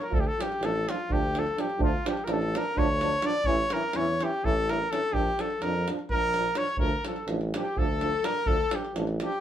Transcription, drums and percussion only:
0.02 davul high soft
0.12 davul low loud
0.41 davul high medium
0.52 davul high soft
0.63 davul high medium
0.76 davul high soft
0.89 davul high medium
1.00 davul high soft
1.10 davul low medium
1.35 davul high medium
1.47 davul high soft
1.58 davul high medium
1.70 davul high soft
1.80 davul low loud
2.06 davul high medium
2.17 davul high soft
2.28 davul high medium
2.42 davul high soft
2.55 davul high medium
2.65 davul high soft
2.77 davul low loud
3.01 davul high medium
3.12 davul high soft
3.22 davul high medium
3.34 davul high soft
3.44 davul low medium
3.70 davul high medium
3.83 davul high soft
3.93 davul high medium
4.08 davul high soft
4.21 davul high medium
4.33 davul high soft
4.45 davul low medium
4.69 davul high medium
4.82 davul high soft
4.93 davul high medium
5.03 davul high soft
5.14 davul low medium
5.27 davul high soft
5.39 davul high medium
5.50 davul high soft
5.62 davul high medium
5.75 davul high soft
5.88 davul high medium
5.99 davul high soft
6.09 davul low medium
6.22 davul high soft
6.34 davul high medium
6.44 davul high soft
6.55 davul high medium
6.67 davul high soft
6.77 davul low medium
7.05 davul high medium
7.16 davul high soft
7.28 davul high medium
7.41 davul high soft
7.54 davul high medium
7.65 davul high soft
7.77 davul low medium
8.01 davul high soft
8.13 davul high soft
8.24 davul high medium
8.34 davul high soft
8.46 davul low loud
8.71 davul high medium
8.85 davul high soft
8.96 davul high medium
9.07 davul high soft
9.20 davul high medium
9.32 davul high soft

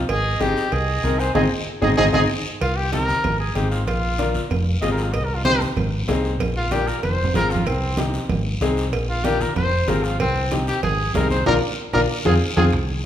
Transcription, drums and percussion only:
0.09 cowbell loud
0.09 high conga soft
0.09 long guiro medium
0.41 high conga loud
0.41 short guiro medium
0.57 short guiro medium
0.72 cowbell medium
0.72 high conga soft
0.72 long guiro medium
1.04 high conga medium
1.04 short guiro medium
1.20 short guiro medium
1.35 high conga loud
1.35 high timbale loud
1.35 long guiro medium
1.82 high conga loud
1.82 high timbale medium
1.82 long guiro loud
1.98 high conga medium
1.98 high timbale loud
1.98 long guiro medium
2.14 high conga medium
2.14 high timbale loud
2.14 long guiro loud
2.61 cowbell loud
2.61 long guiro medium
2.77 high conga soft
2.93 cowbell medium
2.93 high conga loud
2.93 short guiro medium
3.09 high conga medium
3.09 short guiro medium
3.24 cowbell medium
3.24 high conga soft
3.24 low conga medium
3.24 long guiro medium
3.55 cowbell medium
3.55 high conga medium
3.55 short guiro medium
3.71 short guiro medium
3.87 cowbell loud
3.87 long guiro medium
4.03 high conga soft
4.18 cowbell medium
4.18 high conga loud
4.18 short guiro medium
4.34 high conga medium
4.34 short guiro medium
4.50 cowbell loud
4.50 high conga soft
4.50 low conga medium
4.50 long guiro medium
4.82 cowbell medium
4.82 high conga medium
4.82 low timbale medium
4.82 short guiro medium
4.98 short guiro medium
5.13 cowbell loud
5.13 long guiro medium
5.29 high conga soft
5.45 cowbell medium
5.45 high conga loud
5.45 short guiro medium
5.61 high conga medium
5.61 short guiro medium
5.77 cowbell medium
5.77 high conga soft
5.77 low conga medium
5.77 long guiro medium
6.08 cowbell medium
6.08 high conga medium
6.08 low timbale medium
6.08 short guiro medium
6.24 short guiro medium
6.40 cowbell loud
6.40 low conga medium
6.40 long guiro medium
6.56 high conga soft
6.71 cowbell medium
6.71 high conga medium
6.71 short guiro medium
6.88 short guiro medium
7.03 cowbell medium
7.03 high conga medium
7.03 long guiro medium
7.13 high conga medium
7.24 low conga medium
7.34 cowbell medium
7.34 low conga medium
7.34 short guiro medium
7.50 short guiro medium
7.56 low conga medium
7.66 cowbell loud
7.66 long guiro medium
7.82 high conga soft
7.97 cowbell medium
7.97 high conga loud
7.97 short guiro medium
8.14 short guiro medium
8.29 cowbell medium
8.29 high conga soft
8.29 low conga medium
8.29 long guiro medium
8.61 cowbell medium
8.61 high conga medium
8.61 short guiro medium
8.77 short guiro medium
8.93 cowbell loud
8.93 long guiro medium
9.09 high conga soft
9.24 cowbell medium
9.24 high conga loud
9.24 short guiro medium
9.40 high conga medium
9.40 short guiro medium
9.56 cowbell medium
9.56 high conga soft
9.56 low conga medium
9.56 long guiro medium
9.88 cowbell medium
9.88 high conga medium
9.88 low conga medium
9.88 low timbale medium
9.88 short guiro medium
10.04 short guiro medium
10.20 cowbell loud
10.20 low conga medium
10.20 long guiro medium
10.36 high conga soft
10.51 cowbell medium
10.51 high conga loud
10.51 short guiro medium
10.67 short guiro medium
10.83 cowbell loud
10.83 high conga soft
10.83 low conga medium
10.83 long guiro medium
11.15 cowbell medium
11.15 high conga medium
11.15 low conga medium
11.15 low timbale medium
11.15 short guiro medium
11.30 high conga medium
11.30 short guiro medium
11.46 high conga medium
11.46 high timbale loud
11.46 long guiro medium
11.93 high conga loud
11.93 high timbale medium
11.93 long guiro loud
12.25 high conga medium
12.25 high timbale loud
12.25 long guiro loud
12.57 high conga loud
12.57 high timbale loud
12.73 high conga soft
12.73 high timbale medium
12.73 long guiro medium
12.89 high conga medium

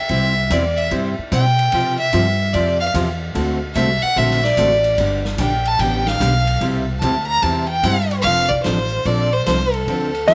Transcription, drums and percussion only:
0.09 kick soft
0.09 ride medium
0.50 kick soft
0.50 hi-hat pedal medium
0.50 ride medium
0.78 ride soft
0.91 kick soft
0.91 ride medium
1.32 kick soft
1.32 hi-hat pedal medium
1.32 ride medium
1.59 ride soft
1.72 kick soft
1.72 ride medium
2.13 kick soft
2.13 hi-hat pedal medium
2.13 ride medium
2.54 kick soft
2.54 ride medium
2.94 kick soft
2.94 hi-hat pedal medium
2.94 ride medium
3.35 kick soft
3.35 ride medium
3.75 kick soft
3.75 hi-hat pedal medium
3.75 ride medium
4.16 kick soft
4.16 ride medium
4.30 snare soft
4.44 snare soft
4.57 kick soft
4.57 hi-hat pedal medium
4.57 ride medium
4.84 ride medium
4.98 kick soft
4.98 ride medium
5.25 snare soft
5.38 kick soft
5.38 hi-hat pedal medium
5.38 ride medium
5.65 ride soft
5.79 kick soft
5.79 ride medium
6.07 snare medium
6.20 kick soft
6.20 hi-hat pedal medium
6.20 ride medium
6.47 ride medium
6.61 kick soft
6.61 ride medium
7.01 kick soft
7.01 hi-hat pedal medium
7.01 ride medium
7.42 kick soft
7.42 ride medium
7.83 kick soft
7.83 hi-hat pedal medium
7.83 ride medium
8.11 ride medium
8.24 kick soft
8.24 ride medium
8.51 kick medium
8.64 snare medium
8.64 hi-hat pedal medium
8.64 ride medium
9.05 kick soft
9.05 ride medium
9.46 snare medium
9.46 hi-hat pedal medium
9.46 ride medium
9.74 ride soft
9.87 kick soft
9.87 ride medium
10.15 ride soft
10.28 snare medium
10.28 hi-hat pedal medium
10.28 ride medium

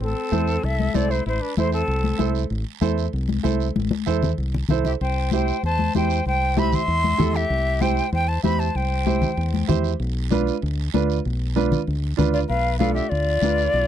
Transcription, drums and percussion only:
0.00 long guiro medium
0.31 high conga medium
0.31 short guiro medium
0.47 short guiro medium
0.63 long guiro medium
0.80 high conga medium
0.95 high conga medium
0.95 short guiro medium
1.11 short guiro medium
1.26 long guiro medium
1.57 high conga medium
1.57 short guiro medium
1.72 short guiro medium
1.88 long guiro medium
2.04 high conga medium
2.19 high conga medium
2.19 short guiro medium
2.35 short guiro medium
2.50 long guiro medium
2.82 high conga medium
2.82 short guiro medium
2.98 short guiro medium
3.13 long guiro medium
3.29 high conga medium
3.45 high conga medium
3.45 short guiro medium
3.60 short guiro medium
3.76 high conga medium
3.76 long guiro medium
3.91 high conga medium
4.07 high conga medium
4.07 short guiro medium
4.23 low conga medium
4.23 short guiro medium
4.38 long guiro medium
4.54 low conga medium
4.69 low conga medium
4.69 short guiro medium
4.85 low conga medium
4.85 short guiro medium
5.01 long guiro medium
5.31 high conga medium
5.31 short guiro medium
5.48 short guiro medium
5.64 long guiro medium
5.79 high conga medium
5.95 high conga medium
5.95 short guiro medium
6.10 short guiro medium
6.26 long guiro medium
6.57 high conga medium
6.57 short guiro medium
6.72 low conga medium
6.72 short guiro medium
6.88 long guiro medium
7.04 high conga medium
7.19 high conga medium
7.19 low conga medium
7.19 short guiro medium
7.34 short guiro medium
7.51 long guiro medium
7.81 high conga medium
7.81 short guiro medium
7.97 short guiro medium
8.13 long guiro medium
8.44 high conga medium
8.44 short guiro medium
8.60 short guiro medium
8.75 long guiro medium
9.07 high conga medium
9.07 short guiro medium
9.22 low conga medium
9.22 short guiro medium
9.37 long guiro medium
9.54 high conga medium
9.69 high conga medium
9.69 low conga medium
9.69 short guiro medium
9.84 short guiro medium
10.00 long guiro medium
10.31 high conga medium
10.31 short guiro medium
10.47 short guiro medium
10.62 long guiro medium
10.94 high conga medium
10.94 short guiro medium
11.10 short guiro medium
11.25 long guiro medium
11.57 high conga medium
11.57 short guiro medium
11.72 low conga medium
11.72 short guiro medium
11.87 long guiro medium
12.19 high conga medium
12.19 low conga medium
12.19 short guiro medium
12.34 short guiro medium
12.50 long guiro medium
12.80 high conga medium
12.80 short guiro medium
12.96 short guiro medium
13.12 long guiro medium
13.42 high conga medium
13.42 short guiro medium
13.58 short guiro medium
13.74 long guiro medium

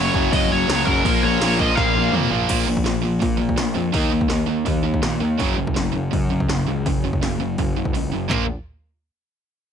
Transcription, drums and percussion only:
0.14 kick loud
0.33 kick loud
0.33 crash medium
0.69 snare loud
0.69 crash medium
0.87 kick medium
1.05 kick loud
1.05 crash medium
1.41 snare loud
1.41 crash medium
1.59 kick medium
1.77 kick loud
1.77 snare medium
1.95 high tom medium
2.13 mid tom loud
2.31 floor tom medium
2.49 kick loud
2.49 open hi-hat medium
2.49 crash loud
2.77 kick medium
2.86 snare loud
2.86 open hi-hat medium
3.22 kick loud
3.22 open hi-hat medium
3.49 kick medium
3.57 snare loud
3.57 open hi-hat medium
3.94 kick loud
3.94 open hi-hat medium
4.21 kick medium
4.30 snare loud
4.30 open hi-hat medium
4.66 kick medium
4.66 open hi-hat soft
4.94 kick medium
5.03 snare loud
5.03 open hi-hat medium
5.40 kick loud
5.40 open hi-hat medium
5.67 kick medium
5.76 snare loud
5.76 open hi-hat medium
6.13 kick loud
6.13 open hi-hat medium
6.40 kick medium
6.49 snare loud
6.49 open hi-hat medium
6.86 kick loud
6.86 open hi-hat medium
7.13 kick medium
7.23 snare loud
7.23 open hi-hat medium
7.58 kick loud
7.58 open hi-hat medium
7.85 kick medium
7.95 open hi-hat medium
8.30 kick medium
8.30 clap medium
8.30 floor tom medium

